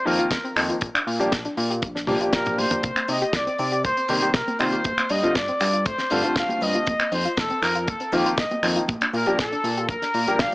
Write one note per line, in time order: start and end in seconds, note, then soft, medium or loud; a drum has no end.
0.05 0.19 F2 medium
0.05 0.23 D#3 medium
0.05 0.24 F3 medium
0.05 0.24 A#3 medium
0.05 0.24 C4 medium
0.05 0.18 D#4 medium
0.05 0.24 F4 loud
0.05 0.56 A#4 medium
0.05 open hi-hat loud
0.19 0.29 F1 soft
0.19 0.24 F4 loud
0.19 closed hi-hat medium
0.31 0.39 F1 medium
0.31 0.40 A#3 loud
0.31 kick loud
0.31 snare loud
0.31 closed hi-hat loud
0.44 0.49 C4 loud
0.44 closed hi-hat medium
0.56 0.72 F2 medium
0.56 0.74 D#3 medium
0.56 0.74 F3 medium
0.56 0.74 A#3 medium
0.56 0.74 C4 medium
0.56 0.62 D#4 medium
0.56 0.74 D#4 medium
0.56 finger snap loud
0.56 open hi-hat loud
0.69 0.75 F4 medium
0.69 closed hi-hat medium
0.81 0.90 A#1 loud
0.81 0.87 A#3 medium
0.81 kick loud
0.81 closed hi-hat medium
0.95 1.03 D4 medium
0.95 finger snap medium
0.95 closed hi-hat medium
1.07 1.19 A#2 medium
1.07 1.19 F4 medium
1.07 open hi-hat loud
1.19 1.30 A#1 soft
1.19 1.30 F3 medium
1.19 1.30 G3 medium
1.19 1.30 A#3 medium
1.19 1.31 D4 medium
1.19 1.25 G4 loud
1.19 1.31 G4 loud
1.19 closed hi-hat medium
1.32 1.48 A#1 medium
1.32 1.41 A#3 loud
1.32 kick loud
1.32 snare loud
1.32 closed hi-hat medium
1.45 1.50 D4 loud
1.45 closed hi-hat medium
1.57 1.84 A#2 loud
1.57 1.63 F4 medium
1.57 open hi-hat loud
1.70 1.75 G4 medium
1.70 closed hi-hat medium
1.82 2.09 A#1 medium
1.82 1.88 A#3 loud
1.82 kick loud
1.82 closed hi-hat medium
1.95 2.04 D4 medium
1.95 snare soft
1.95 closed hi-hat medium
2.07 2.16 A#2 loud
2.07 2.17 F3 medium
2.07 2.18 G3 medium
2.07 2.18 A#3 medium
2.07 2.18 D4 medium
2.07 2.18 G4 loud
2.07 2.17 D5 medium
2.07 open hi-hat loud
2.07 high tom medium
2.20 2.30 A#1 soft
2.20 2.81 F3 medium
2.20 2.82 G3 medium
2.20 2.82 A#3 medium
2.20 2.82 D4 medium
2.20 2.26 F4 medium
2.20 2.82 G4 medium
2.20 closed hi-hat medium
2.33 2.59 A#1 medium
2.33 2.45 F4 medium
2.33 2.56 A#4 medium
2.33 kick loud
2.33 snare medium
2.33 snare loud
2.33 closed hi-hat medium
2.46 2.57 F4 medium
2.46 closed hi-hat medium
2.46 mid tom medium
2.58 2.66 A#2 medium
2.58 2.70 A#3 loud
2.58 3.09 C5 loud
2.58 open hi-hat loud
2.70 2.76 A#3 loud
2.70 closed hi-hat medium
2.70 mid tom medium
2.83 2.91 C2 loud
2.83 2.89 A#3 medium
2.83 kick loud
2.83 closed hi-hat loud
2.83 high conga medium
2.83 cabasa medium
2.96 3.05 C4 medium
2.96 finger snap medium
2.96 closed hi-hat medium
2.96 cabasa soft
3.08 3.24 C3 medium
3.08 3.21 D#4 medium
3.08 3.34 D#5 medium
3.08 open hi-hat loud
3.08 cabasa loud
3.21 3.27 G4 loud
3.21 closed hi-hat medium
3.21 cabasa soft
3.33 3.49 C2 medium
3.33 3.43 A#3 loud
3.33 3.84 D5 loud
3.33 kick loud
3.33 snare loud
3.33 closed hi-hat medium
3.33 cabasa medium
3.46 3.52 C4 loud
3.46 closed hi-hat medium
3.46 cabasa soft
3.59 3.86 C3 loud
3.59 3.64 D#4 medium
3.59 open hi-hat loud
3.59 cabasa loud
3.72 3.77 G4 medium
3.72 closed hi-hat medium
3.72 cabasa soft
3.84 3.92 C2 medium
3.84 3.90 A#3 loud
3.84 4.31 C5 loud
3.84 kick loud
3.84 closed hi-hat medium
3.84 cabasa soft
3.97 4.06 C4 medium
3.97 closed hi-hat medium
3.97 cabasa soft
4.08 4.22 C3 medium
4.08 4.27 D#3 loud
4.08 4.27 G3 medium
4.08 4.27 A#3 medium
4.08 4.27 C4 medium
4.08 4.22 D#4 medium
4.08 4.27 G4 loud
4.08 open hi-hat loud
4.08 cabasa loud
4.22 4.32 C2 soft
4.22 4.27 G4 loud
4.22 closed hi-hat medium
4.22 cabasa soft
4.34 4.42 C2 medium
4.34 4.44 A#3 loud
4.34 4.60 A#4 medium
4.34 kick loud
4.34 snare loud
4.34 closed hi-hat loud
4.34 cabasa medium
4.47 4.53 C4 loud
4.47 closed hi-hat medium
4.47 high conga medium
4.47 cabasa soft
4.59 4.76 C3 medium
4.59 4.77 D#3 medium
4.59 4.77 G3 medium
4.59 4.77 A#3 medium
4.59 4.78 C4 medium
4.59 4.65 D#4 medium
4.59 4.78 F4 medium
4.59 5.10 C5 loud
4.59 finger snap medium
4.59 open hi-hat loud
4.59 cabasa medium
4.72 4.78 G4 medium
4.72 closed hi-hat medium
4.72 cabasa soft
4.84 4.93 G1 loud
4.84 4.90 A3 medium
4.84 kick loud
4.84 closed hi-hat medium
4.84 high conga loud
4.84 cabasa medium
4.98 5.07 C4 medium
4.98 finger snap medium
4.98 closed hi-hat medium
4.98 cabasa soft
5.09 5.23 G2 medium
5.09 5.23 D4 medium
5.09 5.36 D#5 medium
5.09 open hi-hat loud
5.09 cabasa loud
5.23 5.33 G1 soft
5.23 5.34 D3 medium
5.23 5.34 G3 medium
5.23 5.34 A3 medium
5.23 5.34 C4 medium
5.23 5.28 F4 loud
5.23 5.34 F4 loud
5.23 closed hi-hat medium
5.23 cabasa soft
5.35 5.51 G1 medium
5.35 5.45 A3 loud
5.35 5.86 D5 loud
5.35 kick loud
5.35 snare loud
5.35 closed hi-hat medium
5.35 cabasa medium
5.48 5.54 C4 loud
5.48 closed hi-hat medium
5.60 5.87 G2 loud
5.60 5.66 D4 medium
5.60 finger snap medium
5.60 open hi-hat loud
5.60 cabasa medium
5.73 5.79 F4 medium
5.73 closed hi-hat medium
5.73 cabasa soft
5.85 5.94 G1 medium
5.85 5.91 A3 loud
5.85 6.33 C5 loud
5.85 kick loud
5.85 closed hi-hat medium
5.85 cabasa soft
5.98 6.07 C4 medium
5.98 snare soft
5.98 closed hi-hat medium
5.98 cabasa soft
6.10 6.24 G2 medium
6.10 6.21 D3 medium
6.10 6.21 G3 medium
6.10 6.21 A3 medium
6.10 6.21 C4 medium
6.10 6.23 D4 medium
6.10 6.21 F4 loud
6.10 open hi-hat loud
6.10 cabasa loud
6.23 6.34 G1 soft
6.23 6.85 D3 medium
6.23 6.85 G3 medium
6.23 6.85 A3 medium
6.23 6.86 C4 medium
6.23 6.29 F4 loud
6.23 6.86 F4 medium
6.23 closed hi-hat medium
6.23 cabasa soft
6.36 6.44 G1 medium
6.36 6.45 A3 loud
6.36 6.62 F5 loud
6.36 kick loud
6.36 snare loud
6.36 closed hi-hat medium
6.36 cabasa medium
6.49 6.54 C4 loud
6.49 closed hi-hat medium
6.49 high conga loud
6.49 cabasa soft
6.61 6.77 G2 medium
6.61 6.67 D4 medium
6.61 7.12 D#5 loud
6.61 open hi-hat loud
6.61 cabasa medium
6.74 6.80 F4 medium
6.74 closed hi-hat medium
6.74 high conga medium
6.74 cabasa soft
6.86 6.95 F1 loud
6.86 6.92 A#3 medium
6.86 kick loud
6.86 closed hi-hat medium
6.86 high conga medium
6.86 cabasa medium
7.00 7.08 C4 medium
7.00 finger snap medium
7.00 closed hi-hat medium
7.00 cabasa soft
7.12 7.27 F2 medium
7.12 7.24 D#4 medium
7.12 7.36 C5 medium
7.12 open hi-hat loud
7.12 cabasa medium
7.25 7.30 F4 loud
7.25 closed hi-hat medium
7.25 cabasa soft
7.37 7.53 F1 medium
7.37 7.46 A#3 loud
7.37 7.63 A4 loud
7.37 kick loud
7.37 snare loud
7.37 closed hi-hat medium
7.37 cabasa medium
7.50 7.55 C4 loud
7.50 closed hi-hat medium
7.50 cabasa soft
7.62 7.90 F2 loud
7.62 7.68 D#4 medium
7.62 7.88 A#4 loud
7.62 finger snap medium
7.62 snare soft
7.62 open hi-hat loud
7.62 cabasa medium
7.75 7.80 F4 medium
7.75 closed hi-hat medium
7.75 cabasa soft
7.87 7.96 F1 medium
7.87 7.93 A#3 loud
7.87 8.13 A4 loud
7.87 kick loud
7.87 closed hi-hat medium
7.87 cabasa soft
8.00 8.09 C4 medium
8.00 closed hi-hat medium
8.00 cabasa soft
8.12 8.25 F2 medium
8.12 8.30 D#3 loud
8.12 8.31 F3 medium
8.12 8.31 A#3 medium
8.12 8.31 C4 medium
8.12 8.25 D#4 medium
8.12 8.31 F4 loud
8.12 8.38 G4 medium
8.12 open hi-hat loud
8.12 cabasa loud
8.26 8.35 F1 soft
8.26 8.31 F4 loud
8.26 closed hi-hat medium
8.26 cabasa soft
8.37 8.46 F1 medium
8.37 8.47 A#3 loud
8.37 8.63 D#5 medium
8.37 kick loud
8.37 snare loud
8.37 closed hi-hat medium
8.37 cabasa medium
8.51 8.56 C4 loud
8.51 closed hi-hat medium
8.51 high conga loud
8.51 cabasa soft
8.63 8.79 F2 medium
8.63 8.81 D#3 medium
8.63 8.81 F3 medium
8.63 8.81 A#3 medium
8.63 8.81 C4 medium
8.63 8.69 D#4 medium
8.63 8.81 D#4 medium
8.63 finger snap medium
8.63 open hi-hat loud
8.63 cabasa medium
8.76 8.81 F4 medium
8.76 closed hi-hat medium
8.76 cabasa soft
8.88 8.97 A#1 loud
8.88 8.94 A#3 medium
8.88 kick loud
8.88 closed hi-hat medium
8.88 high conga medium
8.88 cabasa soft
9.01 9.10 D4 medium
9.01 finger snap medium
9.01 closed hi-hat medium
9.01 cabasa soft
9.13 9.26 A#2 medium
9.13 9.26 F4 medium
9.13 9.37 A#4 medium
9.13 open hi-hat loud
9.13 cabasa medium
9.26 9.36 A#1 soft
9.26 9.37 F3 medium
9.26 9.37 G3 medium
9.26 9.37 A#3 medium
9.26 9.37 D4 medium
9.26 9.32 G4 loud
9.26 9.38 G4 medium
9.26 closed hi-hat medium
9.26 cabasa soft
9.39 9.54 A#1 medium
9.39 9.48 A#3 loud
9.39 9.86 A4 loud
9.39 kick loud
9.39 snare loud
9.39 closed hi-hat medium
9.39 cabasa medium
9.52 9.57 D4 loud
9.52 closed hi-hat medium
9.52 cabasa soft
9.64 9.90 A#2 medium
9.64 9.70 F4 medium
9.64 open hi-hat loud
9.64 cabasa medium
9.77 9.82 G4 medium
9.77 closed hi-hat medium
9.77 cabasa soft
9.89 9.97 A#1 medium
9.89 9.95 A#3 loud
9.89 10.40 A#4 loud
9.89 kick loud
9.89 closed hi-hat medium
9.89 cabasa soft
10.02 10.11 D4 medium
10.02 snare soft
10.02 closed hi-hat medium
10.02 cabasa soft
10.14 10.27 A#2 medium
10.14 10.27 F4 medium
10.14 open hi-hat loud
10.14 cabasa medium
10.27 10.37 A#1 soft
10.27 10.55 F3 medium
10.27 10.55 G3 medium
10.27 10.55 A#3 medium
10.27 10.55 D4 medium
10.27 10.33 G4 loud
10.27 10.55 G4 medium
10.27 closed hi-hat medium
10.27 cabasa soft
10.39 10.48 A#1 medium
10.39 10.49 A#3 loud
10.39 10.55 F5 loud
10.39 kick loud
10.39 snare loud
10.39 closed hi-hat medium
10.39 cabasa soft